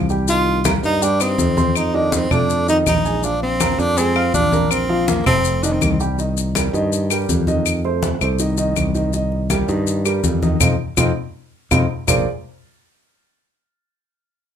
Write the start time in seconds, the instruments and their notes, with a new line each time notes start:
Already playing: fingered electric bass C2
0.09 upright piano G3 G4 G5, maracas
0.28 upright piano D#3 D#4 D#5, tenor saxophone F4, high conga, maracas
0.47 high conga
0.65 upright piano A#3 A#4 A#5, high conga, claves, maracas
0.83 fingered electric bass G2, tenor saxophone D#4, high conga, maracas
1.02 upright piano G3 G4 G5, tenor saxophone D4, high conga, maracas
1.20 tenor saxophone C4, upright piano D#4 D#5 D#6, high conga, claves, maracas
1.38 fingered electric bass F2, high conga, maracas
1.57 upright piano C4 C5 C6, high conga, maracas
1.75 tenor saxophone D#4, high conga, claves, maracas
1.94 upright piano D#3 D#4 D#5, tenor saxophone D4, high conga
2.12 tenor saxophone C4, high conga, maracas
2.31 fingered electric bass F2, upright piano A3 A4 A5, tenor saxophone D4, low conga, claves, maracas
2.50 high conga, maracas
2.68 upright piano D#3 D#4 D#5, tenor saxophone D#4, high conga, maracas
2.86 fingered electric bass A#1, tenor saxophone D#4, high conga, claves, maracas
3.05 upright piano G#3 G#4 G#5, maracas
3.23 upright piano F3 F4 F5, tenor saxophone D4, high conga, maracas
3.42 tenor saxophone C4, high conga
3.60 upright piano A#3 A#4 A#5, high conga, claves, maracas
3.79 fingered electric bass F2, tenor saxophone D4, high conga, maracas
3.97 upright piano G#3 G#4 G#5, tenor saxophone C4, high conga, maracas
4.16 upright piano F4 F5 F6, high conga, claves
4.34 fingered electric bass A#1, tenor saxophone D4, high conga, maracas
4.52 upright piano A#3 A#4 A#5, high conga, maracas
4.71 tenor saxophone C4, high conga, claves, maracas
4.89 upright piano F3 F4 F5, high conga
5.08 tenor saxophone A#3, high conga, maracas
5.26 fingered electric bass F1, upright piano A3 A4 A5, tenor saxophone C4, low conga, claves, maracas
5.45 high conga, maracas
5.63 upright piano D#3 D#4 D#5, tenor saxophone D4, high conga, maracas
5.73 tenor saxophone C4
5.81 fingered electric bass C2, tenor saxophone A#3, high conga, claves, maracas
5.92 tenor saxophone C4
6.00 upright piano G3 G4 G5, maracas
6.18 upright piano D#3 D#4 D#5, high conga, maracas
6.37 high conga, maracas
6.55 upright piano G3 G4 A#4, high conga, claves, maracas
6.73 fingered electric bass G2, upright piano D#3 D#4 D#5, high conga, maracas
6.92 high conga, maracas
7.10 upright piano G3 G4 A#4, high conga, claves, maracas
7.29 fingered electric bass F2, high conga, maracas
7.47 upright piano D#3 D#4 D#5, high conga, maracas
7.66 high conga, claves, maracas
7.84 upright piano A3 A4 C5, high conga
8.03 high conga, maracas
8.21 fingered electric bass C2, upright piano A3 A4 C5, claves, maracas
8.39 upright piano D#3 D#4 D#5, maracas
8.57 upright piano D#3 D#4 D#5, high conga, maracas
8.76 fingered electric bass C2, high conga, claves, maracas
8.95 upright piano D#3 D#4 D#5, maracas
9.13 upright piano D#3 D#4 D#5, high conga, maracas
9.32 high conga
9.50 upright piano G3 G4 A#4, high conga, claves, maracas
9.69 fingered electric bass G2, upright piano D#3 D#4 D#5, high conga, maracas
9.87 high conga, maracas
10.05 upright piano G3 G4 A#4, high conga, claves, maracas
10.24 fingered electric bass F2, high conga, maracas
10.42 upright piano D#3 D#4 D#5, high conga, maracas
10.60 fingered electric bass F2, upright piano C4 D#4 F4, low conga, claves, maracas
10.97 fingered electric bass F2, upright piano C4 D#4 F4, low conga, claves, maracas
11.71 fingered electric bass F2, upright piano C4 D#4 F4, low conga, claves, maracas
12.07 fingered electric bass A#1, upright piano A#3 F4 G#4 A#4 C5 D5, low conga, claves, maracas